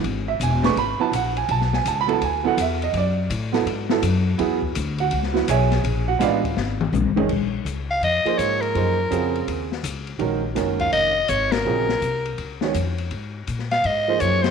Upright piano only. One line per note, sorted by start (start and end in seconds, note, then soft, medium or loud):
0.28 0.40 E5 medium
0.43 0.64 G#5 medium
0.63 0.75 A3 medium
0.63 0.75 D4 medium
0.63 0.75 G#4 medium
0.63 0.75 B4 medium
0.63 0.77 C#6 loud
0.78 1.00 B5 loud
0.99 1.11 F#3 medium
0.99 1.11 B3 medium
0.99 1.12 E4 medium
0.99 1.12 B4 medium
0.99 1.13 A5 loud
1.15 1.37 F#5 medium
1.37 1.49 G#5 medium
1.51 1.73 A5 loud
1.74 1.86 G#5 medium
1.88 1.98 A5 medium
2.01 2.11 B5 loud
2.07 2.19 F#3 medium
2.07 2.20 B3 medium
2.07 2.20 E4 medium
2.07 2.20 A4 medium
2.13 2.23 A5 medium
2.24 2.46 G#5 medium
2.44 2.56 F#3 medium
2.44 2.56 B3 medium
2.44 2.56 E4 medium
2.44 2.57 A4 medium
2.44 2.58 F#5 medium
2.61 2.82 E5 medium
2.84 2.95 D#5 medium
2.97 4.01 D5 medium
3.52 3.64 F#3 medium
3.52 3.65 B3 medium
3.52 3.65 E4 medium
3.52 3.65 A4 medium
3.89 4.01 F#3 medium
3.89 4.01 B3 medium
3.89 4.02 E4 medium
3.89 4.02 A4 medium
4.38 4.60 F#3 medium
4.38 4.60 B3 medium
4.38 4.60 E4 medium
4.38 4.61 G#4 medium
5.00 5.34 F#4 medium
5.00 5.45 F#5 medium
5.33 5.46 F#3 medium
5.33 5.46 B3 medium
5.33 5.46 E4 medium
5.33 5.47 F#4 medium
5.49 6.05 G#4 medium
5.49 5.82 C#5 medium
5.49 5.82 E5 medium
5.49 6.05 G#5 loud
6.08 6.21 F#4 medium
6.08 6.20 F#5 medium
6.19 6.41 G#3 medium
6.19 6.41 B3 medium
6.19 6.42 D4 medium
6.19 6.42 F4 medium
6.19 6.36 B4 medium
6.19 6.36 D5 medium
6.19 6.36 F5 loud
7.16 7.28 D#3 medium
7.16 7.28 G#3 medium
7.16 7.28 C#4 medium
7.16 7.29 G#4 medium
8.25 8.72 F3 medium
8.25 8.72 A#3 medium
8.25 8.73 D#4 medium
8.25 8.73 G#4 medium
8.25 8.73 C5 medium
8.75 8.96 F3 medium
8.75 8.96 A#3 medium
8.75 8.97 D#4 medium
8.75 8.97 G#4 medium
8.75 8.97 C5 medium
9.11 9.66 C#3 medium
9.11 9.67 C4 medium
9.11 9.67 F4 medium
9.11 9.66 F#4 medium
9.11 9.67 G#4 medium
10.19 10.41 D#3 medium
10.19 10.41 G#3 medium
10.19 10.41 C#4 medium
10.19 10.42 F#4 medium
10.19 10.42 A#4 medium
10.55 11.11 D#3 medium
10.55 11.11 G#3 medium
10.55 11.12 C#4 medium
10.55 11.12 F#4 medium
10.55 11.12 A#4 medium
11.65 11.86 C#3 medium
11.65 11.87 F#3 medium
11.65 11.87 C4 medium
11.65 11.87 F4 soft
11.65 11.88 G#4 medium
12.62 12.73 D#3 medium
12.62 12.73 G#3 medium
12.62 12.74 C#4 medium
12.62 12.74 F#4 medium
12.62 12.74 C#5 medium
14.08 14.51 F3 medium
14.08 14.51 A#3 medium
14.08 14.51 D#4 medium
14.08 14.51 G#4 medium
14.08 14.51 C5 medium